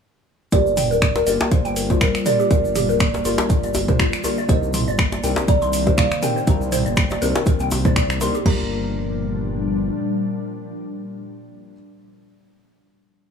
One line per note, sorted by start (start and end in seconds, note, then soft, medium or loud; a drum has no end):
0.52 0.92 G1 loud
0.52 4.45 D3 medium
0.52 4.45 G3 medium
0.52 4.45 A#3 medium
0.52 0.71 A#3 medium
0.52 0.71 D4 medium
0.52 4.45 F4 medium
0.52 0.71 F4 medium
0.52 0.71 G4 medium
0.52 0.65 G4 medium
0.52 0.71 A#4 medium
0.52 1.48 D5 loud
0.52 kick loud
0.52 closed hi-hat medium
0.52 djembe tone medium
0.52 shaker medium
0.67 shaker soft
0.77 0.90 G5 medium
0.77 mid tom medium
0.77 open hi-hat loud
0.77 shaker loud
0.91 1.23 D1 medium
0.91 1.01 A#4 medium
0.91 shaker soft
1.02 finger snap loud
1.02 kick loud
1.02 closed hi-hat medium
1.02 shaker medium
1.16 1.26 A#4 medium
1.16 closed hi-hat soft
1.16 djembe slap medium
1.16 shaker soft
1.26 1.38 G1 medium
1.26 1.87 A#3 medium
1.26 1.87 D4 medium
1.26 1.87 F4 medium
1.26 1.87 G4 medium
1.26 1.87 A#4 loud
1.26 1.40 D5 medium
1.26 open hi-hat medium
1.26 shaker loud
1.40 closed hi-hat soft
1.40 djembe slap loud
1.40 shaker soft
1.51 1.77 C5 loud
1.51 1.64 F5 medium
1.51 kick loud
1.51 closed hi-hat medium
1.51 shaker soft
1.65 1.98 G1 loud
1.65 1.76 G5 loud
1.65 closed hi-hat soft
1.65 shaker soft
1.76 2.02 A#4 medium
1.76 open hi-hat loud
1.76 shaker loud
1.90 2.00 A#3 loud
1.90 2.00 D4 medium
1.90 2.00 F4 medium
1.90 2.00 G4 medium
1.90 2.00 C5 loud
1.90 kick medium
1.90 closed hi-hat soft
1.90 djembe tone medium
1.90 shaker soft
2.01 2.12 G1 loud
2.01 2.14 A#4 loud
2.01 2.24 C5 medium
2.01 finger snap loud
2.01 kick loud
2.01 closed hi-hat medium
2.01 shaker medium
2.15 finger snap medium
2.15 closed hi-hat soft
2.15 shaker soft
2.26 2.38 A#3 loud
2.26 2.38 D4 medium
2.26 2.38 F4 medium
2.26 2.38 G4 medium
2.26 2.38 A#4 loud
2.26 2.39 D5 medium
2.26 3.21 D5 loud
2.26 mid tom medium
2.26 open hi-hat medium
2.26 shaker medium
2.40 2.50 G4 medium
2.40 shaker soft
2.51 2.91 G1 loud
2.51 2.69 A#3 medium
2.51 2.69 D4 medium
2.51 2.69 F4 medium
2.51 2.69 G4 medium
2.51 2.69 A#4 medium
2.51 2.63 F5 medium
2.51 kick loud
2.51 closed hi-hat medium
2.51 djembe tone medium
2.51 shaker medium
2.65 shaker soft
2.75 2.88 G4 loud
2.75 mid tom medium
2.75 open hi-hat loud
2.75 shaker loud
2.89 3.22 D1 medium
2.89 2.99 A#4 medium
2.89 shaker soft
3.00 finger snap loud
3.00 kick loud
3.00 closed hi-hat medium
3.00 shaker medium
3.14 3.25 A#4 medium
3.14 closed hi-hat soft
3.14 djembe slap medium
3.14 shaker soft
3.25 3.36 G1 medium
3.25 3.85 A#3 medium
3.25 3.85 D4 medium
3.25 3.38 F4 loud
3.25 3.85 F4 medium
3.25 3.85 G4 medium
3.25 3.85 A#4 loud
3.25 open hi-hat medium
3.25 shaker medium
3.38 closed hi-hat soft
3.38 djembe slap loud
3.38 shaker soft
3.49 3.63 F4 medium
3.49 kick loud
3.49 closed hi-hat medium
3.49 djembe tone medium
3.49 shaker medium
3.64 3.96 G1 loud
3.64 3.74 D5 medium
3.64 closed hi-hat soft
3.64 shaker soft
3.74 open hi-hat loud
3.74 djembe tone medium
3.74 shaker loud
3.88 3.98 A#3 loud
3.88 3.98 D4 medium
3.88 3.98 F4 medium
3.88 3.98 G4 medium
3.88 3.98 A#4 medium
3.88 3.98 C5 loud
3.88 kick medium
3.88 closed hi-hat soft
3.88 mid tom medium
3.88 shaker soft
3.99 4.11 G1 loud
3.99 4.12 F4 loud
3.99 finger snap loud
3.99 kick loud
3.99 closed hi-hat medium
3.99 shaker medium
4.13 finger snap medium
4.13 closed hi-hat soft
4.13 shaker soft
4.24 4.37 A#3 loud
4.24 4.37 D4 medium
4.24 4.37 F4 loud
4.24 4.37 F4 medium
4.24 4.37 G4 medium
4.24 4.37 A#4 loud
4.24 open hi-hat medium
4.24 djembe tone medium
4.24 shaker medium
4.37 4.48 D5 medium
4.37 shaker soft
4.49 4.89 C2 loud
4.49 8.42 C3 medium
4.49 8.42 D#3 medium
4.49 8.42 A#3 medium
4.49 4.68 C4 medium
4.49 4.68 D4 medium
4.49 4.68 D#4 medium
4.49 4.68 G4 medium
4.49 4.68 A#4 medium
4.49 8.42 C5 medium
4.49 4.62 C5 medium
4.49 5.44 D#5 medium
4.49 kick loud
4.49 closed hi-hat medium
4.49 djembe tone medium
4.49 shaker medium
4.63 shaker soft
4.73 4.86 C6 medium
4.73 mid tom medium
4.73 open hi-hat loud
4.73 shaker medium
4.88 5.20 G1 medium
4.88 4.98 D5 medium
4.88 shaker soft
4.98 finger snap loud
4.98 kick loud
4.98 closed hi-hat medium
4.98 shaker medium
5.12 5.22 D5 medium
5.12 closed hi-hat soft
5.12 djembe slap medium
5.12 shaker soft
5.23 5.35 C2 medium
5.23 5.84 C4 medium
5.23 5.84 D4 medium
5.23 5.84 D#4 medium
5.23 5.84 G4 medium
5.23 5.84 A#4 loud
5.23 5.37 G5 medium
5.23 open hi-hat medium
5.23 shaker loud
5.36 closed hi-hat soft
5.36 djembe slap loud
5.36 shaker soft
5.48 5.99 D5 medium
5.48 5.61 A#5 medium
5.48 kick loud
5.48 closed hi-hat medium
5.48 shaker medium
5.62 5.94 C2 loud
5.62 5.72 C6 loud
5.62 closed hi-hat soft
5.62 shaker soft
5.73 open hi-hat medium
5.73 shaker loud
5.87 5.97 C4 loud
5.87 5.97 D4 medium
5.87 5.97 D#4 medium
5.87 5.97 G4 medium
5.87 5.97 A#4 medium
5.87 5.97 C5 loud
5.87 kick medium
5.87 closed hi-hat soft
5.87 djembe tone medium
5.87 shaker soft
5.97 6.09 C2 loud
5.97 6.11 D5 loud
5.97 6.21 F5 loud
5.97 finger snap loud
5.97 kick loud
5.97 closed hi-hat medium
5.97 shaker medium
6.11 finger snap medium
6.11 closed hi-hat soft
6.11 shaker soft
6.22 6.35 C4 loud
6.22 6.35 D4 medium
6.22 6.35 D#4 medium
6.22 6.35 G4 medium
6.22 6.35 A#4 loud
6.22 6.36 G5 medium
6.22 8.17 G5 loud
6.22 mid tom medium
6.22 open hi-hat medium
6.22 shaker loud
6.36 6.46 C5 medium
6.36 shaker soft
6.47 6.87 C2 loud
6.47 6.66 C4 medium
6.47 6.66 D4 medium
6.47 6.66 D#4 medium
6.47 6.66 G4 medium
6.47 6.66 A#4 medium
6.47 6.60 A#5 medium
6.47 kick loud
6.47 closed hi-hat medium
6.47 djembe tone medium
6.47 shaker medium
6.62 shaker soft
6.72 6.85 C5 loud
6.72 mid tom medium
6.72 open hi-hat medium
6.72 shaker loud
6.86 7.18 G1 medium
6.86 6.96 D5 medium
6.86 closed hi-hat soft
6.86 shaker soft
6.97 finger snap loud
6.97 kick loud
6.97 closed hi-hat medium
6.97 shaker medium
7.10 7.21 D5 medium
7.10 closed hi-hat soft
7.10 djembe slap medium
7.10 shaker soft
7.22 7.33 C2 medium
7.22 7.82 C4 medium
7.22 7.82 D4 medium
7.22 7.82 D#4 medium
7.22 7.82 G4 medium
7.22 7.35 A#4 loud
7.22 7.82 A#4 loud
7.22 open hi-hat medium
7.22 shaker loud
7.36 closed hi-hat soft
7.36 djembe slap loud
7.36 shaker soft
7.46 7.60 A#4 medium
7.46 kick loud
7.46 closed hi-hat medium
7.46 djembe tone medium
7.46 shaker soft
7.60 7.93 C2 loud
7.60 7.70 G5 medium
7.60 closed hi-hat soft
7.60 shaker soft
7.71 open hi-hat medium
7.71 djembe tone loud
7.71 shaker loud
7.85 7.95 C4 loud
7.85 7.95 D4 medium
7.85 7.95 D#4 medium
7.85 7.95 G4 medium
7.85 7.95 C5 loud
7.85 7.95 D5 loud
7.85 kick medium
7.85 closed hi-hat soft
7.85 mid tom medium
7.85 shaker soft
7.96 8.30 C2 medium
7.96 8.09 D5 loud
7.96 finger snap loud
7.96 kick loud
7.96 closed hi-hat medium
7.96 shaker medium
8.10 finger snap medium
8.10 closed hi-hat soft
8.10 shaker soft
8.21 8.33 C4 medium
8.21 8.33 D4 medium
8.21 8.33 D#4 medium
8.21 8.33 G4 medium
8.21 8.33 A#4 loud
8.21 8.33 C6 loud
8.21 open hi-hat medium
8.21 djembe tone medium
8.21 shaker loud
8.34 8.44 G4 medium
8.34 closed hi-hat soft
8.34 shaker soft
8.45 9.91 G1 loud
8.45 11.72 A#2 medium
8.45 11.72 F3 medium
8.45 11.72 G3 medium
8.45 11.72 A#3 medium
8.45 11.72 D4 medium
8.45 11.72 F4 medium
8.45 8.69 G4 medium
8.45 11.72 G4 medium
8.45 11.72 A#4 loud
8.45 11.72 A#5 medium
8.45 kick loud
8.45 floor tom loud
8.45 crash medium